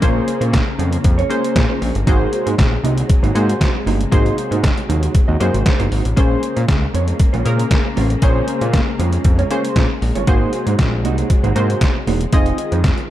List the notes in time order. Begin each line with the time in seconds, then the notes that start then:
Already playing: C#3 G#3 A#3
0.02 A#1 G#3 A#3 C#4 F4 G#4 C5 C#5, kick, closed hi-hat
0.27 muted clean electric guitar stroke, closed hi-hat
0.41 A#2 G#3 C#4 F4 C5, closed hi-hat
0.53 muted clean electric guitar stroke, kick, snare, clap, closed hi-hat
0.67 muted clean electric guitar stroke
0.79 F2 G#3 C#4 F4 C5, closed hi-hat
0.92 G#3 C#4 F4 C5, closed hi-hat
1.04 F2, muted clean electric guitar stroke, kick, closed hi-hat
1.18 G#3 C#4 F4 C#5, closed hi-hat
1.29 G#3 A#3 C#4 F4 G#4 C5 C#5, closed hi-hat
1.43 muted clean electric guitar stroke, closed hi-hat
1.56 A#2, muted clean electric guitar stroke, kick, snare, clap, closed hi-hat
1.69 G#3 C#4 F4 C5
1.81 A#1 G#3 C#4 F4 C5, open hi-hat
1.95 G1, muted clean electric guitar stroke, closed hi-hat
2.07 G#1 C3 F#3 A#3 D#4 F#4 G#4 C5, kick, closed hi-hat
2.32 muted clean electric guitar stroke, closed hi-hat
2.46 G#2 A#3 D#4 F#4 C5, closed hi-hat
2.58 A#1, muted clean electric guitar stroke, kick, snare, clap, closed hi-hat
2.72 muted clean electric guitar stroke
2.84 C2 A#3 D#4 F#4 D#5, closed hi-hat
2.97 A#3 D#4 F#4 C5, closed hi-hat
3.10 muted clean electric guitar stroke, kick, closed hi-hat
3.23 G#1 A#3 D#4 F#4 C5, closed hi-hat
3.35 G#2 A#3 D#4 F#4 G#4 C5, closed hi-hat
3.49 muted clean electric guitar stroke, closed hi-hat
3.61 kick, snare, clap, closed hi-hat
3.74 muted clean electric guitar stroke
3.86 G1 A#3 D#4 F#4 C5, open hi-hat
4.00 muted clean electric guitar stroke, closed hi-hat
4.11 G#1 F#3 A#3 D#4 F#4 G#4 C5 D#5, kick, closed hi-hat
4.26 closed hi-hat
4.38 muted clean electric guitar stroke, closed hi-hat
4.51 G#2 A#3 D#4 F#4 C5, closed hi-hat
4.63 muted clean electric guitar stroke, kick, snare, clap, closed hi-hat
4.77 muted clean electric guitar stroke, closed hi-hat
4.89 D#2 A#3 D#4 F#4 C5, closed hi-hat
5.02 A#3 D#4 F#4 C5, closed hi-hat
5.14 muted clean electric guitar stroke, kick, closed hi-hat
5.28 D#2 A#3 D#4 F#4 D#5
5.40 F#2 A#3 D#4 F#4 G#4 C5 D#5, closed hi-hat
5.54 G#1, muted clean electric guitar stroke, closed hi-hat
5.66 muted clean electric guitar stroke, kick, snare, clap, closed hi-hat
5.79 G1 A#3 D#4 F#4 C5, closed hi-hat
5.91 G#1 A#3 D#4 F#4 C5, open hi-hat
6.05 A1, muted clean electric guitar stroke, closed hi-hat
6.16 A#1 C#3 G#3 A#3 C#4 F4 G#4 C5, kick, closed hi-hat
6.43 muted clean electric guitar stroke, closed hi-hat
6.56 A#2 G#3 C#4 F4 C5, closed hi-hat
6.68 C#2, muted clean electric guitar stroke, kick, snare, clap, closed hi-hat
6.82 muted clean electric guitar stroke
6.94 F2 G#3 C#4 F4 C#5, closed hi-hat
7.07 G#3 C#4 F4 C5, closed hi-hat
7.20 muted clean electric guitar stroke, kick, closed hi-hat
7.33 A#1 G#3 C#4 F4 C5, closed hi-hat
7.45 A#2 G#3 A#3 C#4 F4 G#4 A#4 C5, closed hi-hat
7.59 muted clean electric guitar stroke, closed hi-hat
7.71 kick, snare, clap, closed hi-hat
7.85 muted clean electric guitar stroke
7.96 A1 G#3 C#4 F4 C5, open hi-hat
8.10 muted clean electric guitar stroke, closed hi-hat
8.22 A#1 G#3 A#3 C#4 F4 G#4 C5 C#5, kick, closed hi-hat
8.48 muted clean electric guitar stroke, closed hi-hat
8.61 A#2 G#3 C#4 F4 C5, closed hi-hat
8.73 muted clean electric guitar stroke, kick, snare, clap, closed hi-hat
8.87 muted clean electric guitar stroke
8.99 F2 G#3 C#4 F4 C5, closed hi-hat
9.13 G#3 C#4 F4 C5, closed hi-hat
9.24 F2, muted clean electric guitar stroke, kick, closed hi-hat
9.38 G#3 C#4 F4 C#5, closed hi-hat
9.50 G#3 A#3 C#4 F4 G#4 C5 C#5, closed hi-hat
9.64 muted clean electric guitar stroke, closed hi-hat
9.76 A#2 G#3 C#4 F4 C5, kick, snare, clap, closed hi-hat
9.90 muted clean electric guitar stroke
10.02 A#1, muted clean electric guitar stroke, open hi-hat
10.15 G1 G#3 C#4 F4 C#5, closed hi-hat
10.27 G#1 C3 F#3 A#3 D#4 F#4 G#4 C5, kick, closed hi-hat
10.53 muted clean electric guitar stroke, closed hi-hat
10.66 G#2 A#3 D#4 F#4 C5, closed hi-hat
10.79 A#1, muted clean electric guitar stroke, kick, snare, clap, closed hi-hat
10.93 muted clean electric guitar stroke
11.04 C2 A#3 D#4 F#4 D#5, closed hi-hat
11.18 A#3 D#4 F#4 C5, closed hi-hat
11.30 muted clean electric guitar stroke, kick, closed hi-hat
11.44 G#1 A#3 D#4 F#4 C5, closed hi-hat
11.55 G#2 A#3 D#4 F#4 G#4 C5, closed hi-hat
11.70 muted clean electric guitar stroke, closed hi-hat
11.81 kick, snare, clap, closed hi-hat
11.95 muted clean electric guitar stroke
12.07 E1 A#3 D#4 F#4 C5, open hi-hat
12.21 muted clean electric guitar stroke, closed hi-hat
12.33 F1 D#3 F3 C4 D#4 F4 G#4 D#5, kick, closed hi-hat
12.46 closed hi-hat
12.58 muted clean electric guitar stroke, closed hi-hat
12.72 F2 C4 D#4 G#4 C5, closed hi-hat
12.84 muted clean electric guitar stroke, kick, snare, clap, closed hi-hat
12.98 muted clean electric guitar stroke, closed hi-hat